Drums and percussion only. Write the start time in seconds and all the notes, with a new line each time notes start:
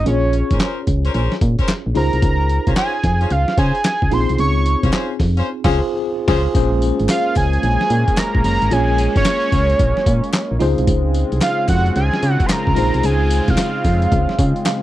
0.06 closed hi-hat
0.33 closed hi-hat
0.51 kick, closed hi-hat
0.60 snare, clap, closed hi-hat
0.87 kick, closed hi-hat
1.05 closed hi-hat
1.14 closed hi-hat
1.32 snare
1.41 kick, closed hi-hat
1.59 kick, closed hi-hat
1.68 snare, clap, closed hi-hat
1.95 open hi-hat
2.13 closed hi-hat
2.22 kick, closed hi-hat
2.49 closed hi-hat
2.67 kick, closed hi-hat
2.76 snare, clap, closed hi-hat
3.03 kick, snare, closed hi-hat
3.21 closed hi-hat
3.30 closed hi-hat
3.48 snare
3.58 kick, closed hi-hat
3.75 closed hi-hat
3.84 snare, clap, closed hi-hat
4.02 kick
4.11 open hi-hat
4.29 closed hi-hat
4.38 closed hi-hat
4.66 closed hi-hat
4.83 kick, closed hi-hat
4.93 snare, clap, closed hi-hat
5.19 kick, snare, open hi-hat
5.37 closed hi-hat
5.64 kick, snare, crash
6.28 kick, snare, crash
6.55 kick, closed hi-hat, tambourine
6.82 closed hi-hat, tambourine
7.00 closed hi-hat
7.09 snare, clap, closed hi-hat, tambourine
7.36 kick, clap, open hi-hat, tambourine
7.53 closed hi-hat
7.63 closed hi-hat
7.81 snare
7.90 closed hi-hat, tambourine
8.08 kick, closed hi-hat
8.17 snare, clap, closed hi-hat, tambourine
8.35 kick
8.44 open hi-hat, tambourine
8.62 closed hi-hat
8.71 closed hi-hat, tambourine
8.98 closed hi-hat, tambourine
9.16 kick, closed hi-hat
9.25 snare, clap, closed hi-hat, tambourine
9.52 kick, open hi-hat, tambourine
9.70 closed hi-hat
9.79 kick, closed hi-hat
9.97 snare
10.06 kick, closed hi-hat, tambourine
10.24 closed hi-hat
10.33 snare, clap, closed hi-hat, tambourine
10.60 open hi-hat, tambourine
10.78 closed hi-hat
10.87 kick, closed hi-hat, tambourine
11.14 closed hi-hat, tambourine
11.32 closed hi-hat
11.41 snare, clap, closed hi-hat, tambourine
11.68 kick, clap, open hi-hat, tambourine
11.86 closed hi-hat
11.96 closed hi-hat
12.13 snare
12.22 closed hi-hat, tambourine
12.40 kick, closed hi-hat
12.49 snare, clap, closed hi-hat, tambourine
12.67 kick
12.76 open hi-hat, tambourine
12.94 closed hi-hat
13.03 closed hi-hat, tambourine
13.30 closed hi-hat, tambourine
13.48 kick, closed hi-hat
13.57 snare, clap, closed hi-hat, tambourine
13.84 kick, open hi-hat, tambourine
14.02 closed hi-hat
14.12 kick, closed hi-hat
14.29 snare
14.38 kick, closed hi-hat, tambourine
14.56 closed hi-hat
14.65 snare, clap, closed hi-hat, tambourine